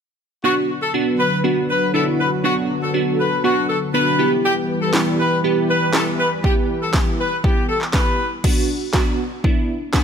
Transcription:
0.44 D3 F#3 B3 D4 F#4 B4
0.81 A4
0.94 B3 D4 F#4
1.19 B4
1.44 B3 D4 F#4
1.69 B4
1.94 B3 D4 E4 A4
2.19 B4
2.44 B3 D4 F#4 A4
2.82 A4
2.94 B3 D4 F#4
3.19 B4
3.44 B3 D4 F#4
3.69 A4
3.94 B3 D4 F#4 B4
4.19 E3 G3 B3 E4 G4 B4
4.44 G4
4.82 A4
4.93 B3 E4 G4, snare, clap
5.19 B4
5.44 B3 E4 G4
5.69 B4
5.93 B3 E4 G4 A4, snare, clap
6.19 B4
6.44 B3 E4 G4, kick
6.82 A4
6.93 B3 E4 G4, kick, snare, clap
7.19 B4
7.44 B3 E4 G4, kick
7.69 A4
7.81 clap
7.93 B3 E4 G4 B4, kick, snare, clap
8.44 B3 D4 F#4, kick, crash
8.93 B3 D4 F#4, kick, snare, clap
9.44 B3 D4 E4, kick
9.93 B3 D4 F#4, kick, snare, clap

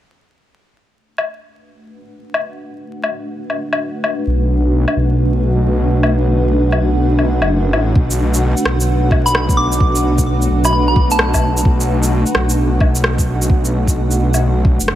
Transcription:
0.57 A3
0.97 D4 B4 F#5
1.18 low woodblock
1.36 F#4
2.34 low woodblock
3.04 low woodblock
3.50 low woodblock
3.73 low woodblock
4.04 low woodblock
4.27 B1
4.88 low woodblock
4.96 B1
6.03 low woodblock
6.72 low woodblock
6.80 B1
7.19 low woodblock
7.41 F#1, low woodblock
7.73 A1, low woodblock
7.95 B1, kick
8.11 shaker
8.34 shaker
8.57 shaker
8.65 B1, cross-stick
8.81 shaker
9.11 kick, low woodblock
9.26 B5, shaker
9.35 cross-stick
9.49 kick, shaker
9.57 D6
9.72 shaker
9.80 kick
9.96 shaker
10.18 kick, shaker
10.42 shaker
10.50 B1
10.65 B5, low woodblock, shaker
10.73 B5
10.88 B5
10.96 kick
11.11 A5, shaker
11.19 cross-stick
11.34 kick, low woodblock, shaker
11.57 shaker
11.65 B1, kick
11.81 shaker
12.03 shaker
12.26 shaker
12.35 B1, cross-stick
12.50 shaker
12.80 kick, low woodblock
12.95 shaker
13.04 cross-stick
13.18 kick, shaker
13.42 shaker
13.50 kick
13.65 shaker
13.87 kick, shaker
14.11 shaker
14.19 B1
14.34 low woodblock, shaker
14.65 kick
14.80 F#1, shaker
14.88 cross-stick

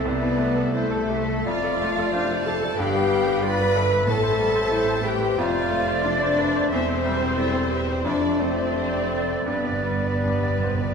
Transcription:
Already playing: C2 C3 A3 E4 G4 A4 E5
0.05 C2 B3 B4 C5 D5
0.21 E4 A4
0.38 A3 C5
0.55 A4
0.73 A3 E4 A4 C5
0.91 A4
1.10 G4 C5 E5
1.28 A4
1.43 F1 F2 F4 D5 F5
1.63 A4 D5
1.80 A3 F5
1.98 A4 D5
2.12 D4 C5 F5
2.30 A4 D5
2.43 G4 A4 A5
2.48 F5
2.62 A4 D5
2.75 G1 G2 B3 G4 B4 F5 G5
2.80 G4 D5
2.95 B4
3.11 G3 D5
3.27 B4
3.42 F4 B4 D5 B5
3.60 B4
3.75 A4 D5 E5
3.91 B4
4.07 A1 A2 C4 A4 E5 A5
4.23 C5
4.39 G3 A4
4.55 C5
4.71 E4 A4 C5
4.88 C5
5.04 G4 A4 B4 G5
5.21 C5
5.37 F1 F2 A3 F4 C5 D5 F5
5.55 C5 D5
5.71 A3 C5
5.86 C5 D5
6.03 D4 C5 D5
6.20 C5 D5
6.38 B4 C5
6.53 C5 D5
6.68 E1 E2 C4 C5 E5
6.73 E2
6.88 C5
7.05 G3 C5 E5
7.21 C5
7.37 G3 E4 A4 E5
7.54 C5
7.71 G4 B4 E5
7.88 C5
8.04 F1 F2 A3 D4 F4 C5 D5
8.22 D5
8.39 A3 C4 C5
8.57 D5
8.74 D4 G4 C5
8.92 D5
9.09 A4 C5
9.28 D5
9.45 G1 G2 G3 B3 B4
9.64 G2 D5
9.73 G2
9.81 G2 G3 B4
9.90 G2
10.04 G2 D5
10.15 G2
10.21 G2 D4 B4
10.32 G2
10.40 G2 D5
10.50 G2
10.58 G2 B4
10.64 G2 C5
10.74 G2
10.79 G2 D5

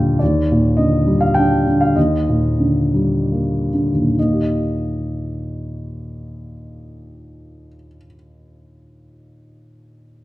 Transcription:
Already playing: D#2 A#2 D3 G3 D#5 F5 G5
0.19 D#2 D5
0.52 A#2
0.77 D3 D#5
1.06 G3
1.21 F5
1.34 G5
1.38 D4
1.67 D3
1.81 F5
1.96 D#2 D#5
2.29 A#2
2.60 D3
2.94 G3
3.31 A#3
3.74 D3
3.92 D#2
4.02 A#2
4.12 D#3
4.19 A#3 D#5
4.32 G4
4.42 D#5

